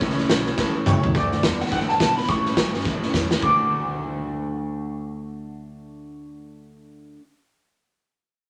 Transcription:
Already playing: C#4
0.00 C#2 A2 E3 A3 C#4 E4 A4, kick, snare
0.10 snare
0.17 A3 C#4 E4 A4, snare
0.29 B1 A2 F#3 A3 C#4 E4 A4, snare, hi-hat pedal
0.46 A3 C#4 E4 A4, snare
0.58 A1 A2 E3 A3 C#4 E4 A4, kick, snare
0.75 A3 C#4 E4 A4
0.86 C#2 A2 F#3 A3 C#4 E4 A4 C#5, hi-hat pedal, mid tom
1.03 A3 C#4 E4 A4, floor tom
1.15 D2 D3 A3 D4 F#4 A4 D5, kick, snare
1.31 D4 F#4 A4, snare
1.42 E2 D3 A3 B3 D4 F#4 A4, kick, snare, hi-hat pedal
1.60 D4 F#4 A4 F#5, snare
1.66 snare
1.71 F#2 D3 A3 D4 F#4 A4 F#5, kick, snare
1.80 snare
1.88 D4 F#4 A4 A5, snare
2.00 B2 D3 A3 B3 D4 F#4 A4, kick, snare, hi-hat pedal
2.17 D4 F#4 A4 B5, snare
2.23 snare
2.28 A2 E3 A3 C#4 E4 A4 C#6, kick, snare
2.45 A3 C#4 E4 A4, snare
2.56 G2 A2 E3 F#3 A3 C#4 E4 A4, kick, snare, hi-hat pedal
2.74 A3 C#4 E4 A4, snare
2.80 snare
2.85 F#2 A2 E3 A3 C#4 E4 A4, kick, snare
3.03 A3 C#4 E4 A4, snare
3.14 E2 A2 E3 F#3 A3 C#4 E4 A4, kick, snare, hi-hat pedal
3.31 A3 C#4 E4 A4, snare
3.41 D2 D3 A3 D6, kick
3.46 D4 F#4
3.50 A4

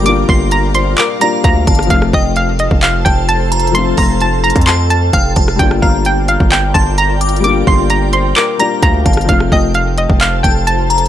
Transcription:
Already playing: G1 G3 A#3 D4 F4 A#4 D5
0.02 G3 A#3 F5 D6, closed hi-hat
0.07 D4 F4
0.29 G1 C6, kick
0.51 A#5, closed hi-hat
0.74 C5 C6, closed hi-hat
0.98 A#4 D6, clap, closed hi-hat
1.20 G3 A#3 D4 F4 D5 A#5, closed hi-hat
1.44 D2 F5 A#5, kick, closed hi-hat
1.67 G1 F5 A5, kick, closed hi-hat
1.75 cross-stick, closed hi-hat
1.83 F3, closed hi-hat
1.89 F1 A3 C4 A4 C5 F5 A5, kick, closed hi-hat
1.94 F4
2.02 cross-stick
2.13 F1 D#5 G5, kick
2.36 F5, closed hi-hat
2.59 D#5, closed hi-hat
2.71 F1, kick
2.82 F5, clap, closed hi-hat
3.05 F1 G5 A5, kick, closed hi-hat
3.29 A5, closed hi-hat
3.52 A#5, closed hi-hat
3.60 closed hi-hat
3.67 closed hi-hat
3.71 F3 A3 C6, closed hi-hat
3.76 C4 F4
3.97 F1 A#5 C6, kick, open hi-hat
4.21 A5, closed hi-hat
4.44 A#5, closed hi-hat
4.50 closed hi-hat
4.56 F2, kick, closed hi-hat
4.61 closed hi-hat
4.66 A5 C6, clap, closed hi-hat
4.90 A5, closed hi-hat
5.13 F1 F5 G5, kick, closed hi-hat
5.36 F1 A5, kick, closed hi-hat
5.48 cross-stick
5.56 G1 G3 A#3 G5, kick, closed hi-hat
5.60 D4 F4 A#4 D5
5.71 cross-stick
5.82 G1 F5 A#5, kick
6.05 G5, closed hi-hat
6.28 F5, closed hi-hat
6.40 G1, kick
6.52 G5, clap, closed hi-hat
6.74 G1 A5 C6, kick, closed hi-hat
6.98 A#5, closed hi-hat
7.21 D6, closed hi-hat
7.29 closed hi-hat
7.36 G3, closed hi-hat
7.43 A#3 D4 D6, closed hi-hat
7.47 F4
7.67 G1 C6, kick
7.90 A#5, closed hi-hat
8.13 C5 C6, closed hi-hat
8.36 A#4 D6, clap, closed hi-hat
8.58 G3 A#3 D4 F4 D5 A#5, closed hi-hat
8.82 D2 F5 A#5, kick, closed hi-hat
9.06 G1 F5 A5, kick, closed hi-hat
9.13 cross-stick, closed hi-hat
9.21 F3, closed hi-hat
9.27 F1 A3 C4 F4 A4 C5 F5 A5, kick, closed hi-hat
9.32 F4
9.40 cross-stick
9.52 F1 D#5 G5, kick
9.74 F5, closed hi-hat
9.98 D#5, closed hi-hat
10.10 F1, kick
10.21 F5, clap, closed hi-hat
10.43 F1 G5 A5, kick, closed hi-hat
10.67 A5, closed hi-hat
10.90 A#5, closed hi-hat
10.98 closed hi-hat

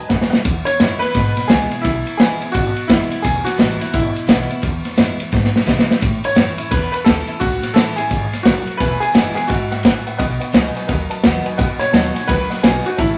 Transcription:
0.08 F#2 B4 D#5 F#5 G#5, kick, snare
0.21 snare
0.29 B4 D#5 F#5, muted upright bass stroke, snare
0.45 E2, kick, ride
0.65 C#5, ride
0.80 F#2 E3 G#3 B3 E4, snare, ride
0.99 E4 B4, muted upright bass stroke, snare, ride
1.04 B3
1.15 G#2 B2, kick, snare, ride
1.37 muted upright bass stroke, snare, ride
1.48 C#2 E3 G#3 B3 E4 G#4, kick, snare, ride
1.71 B3 E4, muted upright bass stroke, ride
1.81 B1 E2 E4, kick, ride
2.06 muted upright bass stroke, ride
2.17 F#1 E3 G#3 B3 E4 G#4, snare, ride
2.41 B3 E4, muted upright bass stroke, ride
2.52 G#1 B2 F#4, kick, ride
2.76 ride
2.88 F#1 E3 G#3 B3 E4, kick, snare, ride
3.11 B3 E4, muted upright bass stroke, ride
3.22 E1 E2 G#4, kick, ride
3.44 F#4, muted upright bass stroke, snare, ride
3.57 A1 E3 G#3 B3 E4, snare, ride
3.80 B3 E4, muted upright bass stroke, snare, ride
3.93 G#1 B2 E4, kick, ride
4.16 muted upright bass stroke, ride
4.27 B1 E3 G#3 B3 E4, kick, snare, ride
4.49 B3 E4, muted upright bass stroke, ride
4.62 E2, kick, ride
4.85 muted upright bass stroke, snare, ride
4.96 F#2 E3 G#3 B3 E4, snare, ride
5.19 B3 E4, muted upright bass stroke, ride
5.32 G#2 B2, kick, snare
5.44 snare
5.55 muted upright bass stroke, snare
5.66 B2 E3 G#3 B3 E4, kick, snare
5.79 snare
5.87 B3 E4, muted upright bass stroke, snare
6.01 A2, kick, ride
6.24 C#5, muted upright bass stroke, ride
6.35 F#2 E3 A3 C#4 E4, snare, ride
6.58 C#4 E4, muted upright bass stroke, ride
6.71 E2 B4, kick, ride
6.92 B4, ride
7.04 D#2 E3 A3 C#4 E4 A4, kick, snare, ride
7.27 C#4 E4, muted upright bass stroke, ride
7.40 C#2 A2 F#4, kick, ride
7.63 muted upright bass stroke, snare, ride
7.74 A1 E3 A3 C#4 E4 A4, snare, ride
7.96 C#4 E4 G#4, muted upright bass stroke, ride
8.10 G#1 G#2, kick, ride
8.33 muted upright bass stroke, snare, ride
8.43 F#1 F#2 F#4, kick, snare, ride
8.67 muted upright bass stroke, ride
8.77 E1 E2 B4 E5 G#5, kick, ride
9.00 G#4 B4 E5 G#5, ride
9.13 F#1 E3 G#3 B3 E4 B4 E5 F#5, snare, ride
9.35 B3 E4 G#4 B4 E5 F#5, muted upright bass stroke, ride
9.47 G#1 G#2 F#4 B4 E5 F#5, kick, snare, ride
9.71 B4 E5 F#5, snare, ride
9.83 A2 B4 E5 G#5, kick, snare, ride
10.06 B4 E5 F#5, muted upright bass stroke, ride
10.17 B1 B2 B4 D#5 F#5, kick, ride
10.39 B4 D#5 F#5, ride
10.52 C#2 F#3 B3 D#4 F#4 B4 D#5 G#5, snare, ride
10.75 B4 D#5 G#5, snare, ride
10.87 D#2 F#2 B4 D#5 F#5, kick, snare, ride
11.09 B4 D#5 A5, muted upright bass stroke, ride
11.23 E2 F#3 B3 D#4 F#4 B4 D#5 F#5, kick, snare, ride
11.45 D#4 F#4 B4 D#5 G#5, ride
11.57 F#2 B2 B4 D#5 F#5, kick, ride
11.79 B4 C#5 D#5 F#5, muted upright bass stroke, snare, ride
11.92 D#2 F#3 B3 D#4 F#4 B4 D#5 A5, snare, ride
12.14 D#4 F#4 B4 D#5 G#5, muted upright bass stroke, snare, ride
12.27 C#2 F#2 B4 D#5 F#5, kick, snare, ride
12.50 B4 D#5 F#5, muted upright bass stroke, snare, ride
12.62 B1 F#3 B3 D#4 F#4 G#4 B4 D#5 F#5, kick, snare, ride
12.84 D#4 F#4 B4 D#5 G#5, ride
12.97 A1 A2 E4 C#5 E5 A5, kick, ride

